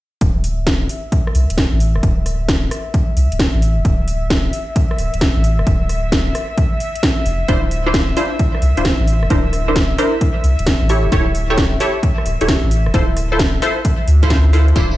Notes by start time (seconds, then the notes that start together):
0.21 D1 E5, kick, closed hi-hat
0.44 open hi-hat
0.67 kick, snare, closed hi-hat
0.89 open hi-hat
1.12 kick, closed hi-hat
1.27 cross-stick
1.35 C2, open hi-hat
1.50 D1, closed hi-hat
1.58 kick, snare, closed hi-hat
1.73 A1
1.80 open hi-hat
1.96 D1, cross-stick
2.03 D1, kick, closed hi-hat
2.26 cross-stick, open hi-hat
2.49 kick, snare, closed hi-hat
2.71 cross-stick, open hi-hat
2.94 kick, closed hi-hat
3.17 C2, open hi-hat
3.32 D1, closed hi-hat
3.39 kick, snare, closed hi-hat
3.55 A1
3.62 open hi-hat
3.77 D1
3.85 D1, kick, closed hi-hat
4.08 open hi-hat
4.30 kick, snare, closed hi-hat
4.53 open hi-hat
4.76 kick, closed hi-hat
4.91 cross-stick
4.98 D1, open hi-hat
5.14 D1, closed hi-hat
5.21 kick, snare, closed hi-hat
5.36 A1
5.44 open hi-hat
5.59 D1, cross-stick
5.67 D1, kick, closed hi-hat
5.89 cross-stick, open hi-hat
6.12 kick, snare, closed hi-hat
6.35 cross-stick, open hi-hat
6.58 kick, closed hi-hat
6.80 open hi-hat
6.95 closed hi-hat
7.03 kick, snare, closed hi-hat
7.26 F1, open hi-hat
7.48 D1 D4 E4 F4 C5, kick, closed hi-hat
7.71 open hi-hat
7.86 D4 E4 F4 C5
7.94 kick, snare, closed hi-hat
8.17 D4 E4 F4 C5, open hi-hat
8.39 kick, closed hi-hat
8.55 cross-stick
8.62 C2, open hi-hat
8.77 D1 D4 E4 F4 C5, closed hi-hat
8.85 kick, snare, closed hi-hat
9.00 A1
9.07 open hi-hat
9.23 D1, cross-stick
9.30 D1 D4 E4 A#4 C5, kick, closed hi-hat
9.53 cross-stick, open hi-hat
9.68 D4 E4 A#4 C5
9.76 kick, snare, closed hi-hat
9.98 D4 E4 A#4 C5, cross-stick, open hi-hat
10.21 kick, closed hi-hat
10.44 C2, open hi-hat
10.59 D1, closed hi-hat
10.67 kick, snare, closed hi-hat
10.82 A1
10.89 E4 G4 A4 C#5, open hi-hat
11.04 D1
11.12 D1 E4 G4 A4 C#5, kick, closed hi-hat
11.35 open hi-hat
11.50 E4 G4 A4 C#5
11.58 kick, snare, closed hi-hat
11.80 E4 G4 A4 C#5, open hi-hat
12.03 kick, closed hi-hat
12.18 cross-stick
12.26 D1, open hi-hat
12.41 D1 E4 G4 A4 C#5, closed hi-hat
12.48 kick, snare, closed hi-hat
12.64 A1
12.71 open hi-hat
12.86 D1, cross-stick
12.94 D1 E4 F4 A4 C5, kick, closed hi-hat
13.17 cross-stick, open hi-hat
13.32 E4 F4 A4 C5
13.39 kick, snare, closed hi-hat
13.62 E4 F4 A4 C5, cross-stick, open hi-hat
13.85 kick, closed hi-hat
14.08 D2, open hi-hat
14.23 E4 F4 A4 C5, kick, closed hi-hat
14.30 kick, snare, closed hi-hat
14.53 E4 F4 A4 C5, open hi-hat
14.68 closed hi-hat
14.76 D1 D4 E4 F4 C5 A5, kick, closed hi-hat, tambourine
14.91 tambourine